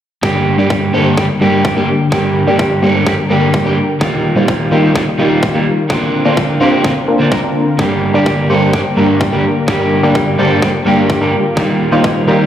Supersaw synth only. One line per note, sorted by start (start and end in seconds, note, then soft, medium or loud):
0.23 0.56 G3 medium
0.23 0.56 A#3 medium
0.23 0.56 D4 medium
0.23 0.56 G4 medium
0.23 0.56 A#4 medium
0.58 0.91 G3 medium
0.58 0.91 A#3 medium
0.58 0.91 D4 medium
0.58 0.91 G4 medium
0.58 0.91 D5 loud
0.94 1.38 G3 loud
0.94 1.38 A#3 medium
0.94 1.38 D4 medium
0.94 1.38 G4 medium
0.94 1.38 C5 loud
1.41 1.74 G3 medium
1.41 1.74 A#3 medium
1.41 1.74 D4 medium
1.41 1.74 G4 medium
1.41 1.74 A#4 medium
1.76 1.98 G3 medium
1.76 1.98 A#3 medium
1.76 1.98 D4 medium
1.76 1.98 G4 medium
1.76 1.98 A#4 medium
2.12 2.45 G3 medium
2.12 2.45 A#3 medium
2.12 2.45 D4 medium
2.12 2.45 G4 medium
2.12 2.45 A#4 medium
2.47 2.80 G3 medium
2.47 2.80 A#3 medium
2.47 2.80 D4 medium
2.47 2.80 G4 medium
2.47 2.80 D5 medium
2.83 3.27 G3 loud
2.83 3.27 A#3 medium
2.83 3.27 D4 medium
2.83 3.27 G4 medium
2.83 3.27 C5 loud
3.30 3.63 G3 medium
3.30 3.63 A#3 medium
3.30 3.63 D4 medium
3.30 3.63 G4 medium
3.30 3.63 A#4 medium
3.66 3.87 G3 medium
3.66 3.87 A#3 medium
3.66 3.87 D4 medium
3.66 3.87 G4 medium
3.66 3.87 A#4 medium
4.01 4.34 G3 medium
4.01 4.34 A#3 medium
4.01 4.34 D#4 medium
4.01 4.34 F4 medium
4.01 4.34 G4 medium
4.36 4.69 G3 medium
4.36 4.69 A#3 medium
4.36 4.69 D#4 medium
4.36 4.69 F4 medium
4.36 4.69 C5 loud
4.72 5.16 G3 loud
4.72 5.16 A#3 medium
4.72 5.16 D#4 medium
4.72 5.16 F4 medium
4.72 5.16 A#4 loud
5.19 5.52 G3 medium
5.19 5.52 A#3 medium
5.19 5.52 D#4 medium
5.19 5.52 F4 medium
5.19 5.52 G4 medium
5.55 5.76 G3 medium
5.55 5.76 A#3 medium
5.55 5.76 D#4 medium
5.55 5.76 F4 medium
5.55 5.76 G4 medium
5.90 6.23 A#3 medium
5.90 6.23 C4 medium
5.90 6.23 D4 medium
5.90 6.23 F4 medium
5.90 6.23 A#4 medium
6.25 6.58 A#3 medium
6.25 6.58 C4 medium
6.25 6.58 D4 medium
6.25 6.58 F4 medium
6.25 6.58 D5 loud
6.61 7.05 A#3 loud
6.61 7.05 C4 medium
6.61 7.05 D4 medium
6.61 7.05 F4 medium
6.61 7.05 C5 loud
7.08 7.41 A#3 medium
7.08 7.41 C4 medium
7.08 7.41 D4 medium
7.08 7.41 F4 medium
7.08 7.41 A#4 medium
7.43 7.65 A#3 medium
7.43 7.65 C4 medium
7.43 7.65 D4 medium
7.43 7.65 F4 medium
7.43 7.65 A#4 medium
7.79 8.12 G3 medium
7.79 8.11 A#3 medium
7.79 8.12 D4 medium
7.79 8.11 G4 medium
7.79 8.11 A#4 medium
8.14 8.47 G3 medium
8.14 8.47 A#3 medium
8.14 8.47 D4 medium
8.14 8.47 G4 medium
8.14 8.47 D5 loud
8.50 8.94 G3 medium
8.50 8.94 A#3 medium
8.50 8.94 D4 medium
8.50 8.94 G4 medium
8.50 8.94 C5 loud
8.97 9.30 G3 medium
8.97 9.30 A#3 medium
8.97 9.30 D4 medium
8.97 9.30 G4 medium
8.97 9.30 A#4 medium
9.32 9.54 G3 medium
9.32 9.54 A#3 medium
9.32 9.54 D4 medium
9.32 9.54 G4 medium
9.32 9.54 A#4 medium
9.68 10.00 G3 medium
9.68 10.00 A#3 medium
9.68 10.00 D4 medium
9.68 10.00 G4 medium
9.68 10.00 A#4 medium
10.03 10.36 G3 medium
10.03 10.36 A#3 medium
10.03 10.36 D4 medium
10.03 10.36 G4 medium
10.03 10.36 D5 loud
10.39 10.83 G3 loud
10.39 10.83 A#3 medium
10.39 10.83 D4 medium
10.39 10.83 G4 medium
10.39 10.83 C5 loud
10.86 11.19 G3 medium
10.86 11.19 A#3 medium
10.86 11.19 D4 medium
10.86 11.19 G4 medium
10.86 11.19 A#4 medium
11.21 11.43 G3 medium
11.21 11.43 A#3 medium
11.21 11.43 D4 medium
11.21 11.43 G4 medium
11.21 11.43 A#4 medium
11.57 11.89 G3 medium
11.57 11.89 A#3 medium
11.57 11.89 D#4 medium
11.57 11.89 F4 medium
11.57 11.89 G4 medium
11.92 12.25 G3 medium
11.92 12.25 A#3 medium
11.92 12.25 D#4 medium
11.92 12.25 F4 medium
11.92 12.25 C5 loud
12.28 12.46 G3 medium
12.28 12.46 A#3 medium
12.28 12.46 D#4 medium
12.28 12.46 F4 medium
12.28 12.46 A#4 loud